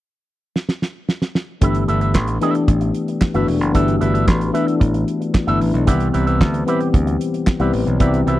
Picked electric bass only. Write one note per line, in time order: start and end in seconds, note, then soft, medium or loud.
1.62 1.84 G1 medium
1.89 2.15 G1 medium
2.15 2.37 A1 medium
2.68 2.90 A1 medium
3.35 3.46 G1 medium
3.48 3.61 E1 medium
3.61 3.72 F#1 medium
3.75 3.97 G1 medium
4.01 4.28 G1 medium
4.28 4.50 A1 medium
4.81 5.03 A1 medium
5.48 5.59 G1 medium
5.61 5.72 A1 medium
5.74 5.85 B1 medium
5.88 6.09 C2 medium
6.15 6.41 C2 medium
6.41 6.63 D2 medium
6.94 7.16 D2 medium
7.60 7.71 C2 medium
7.74 7.84 A1 medium
7.87 7.98 B1 medium
8.00 8.22 C2 medium
8.27 8.40 C2 medium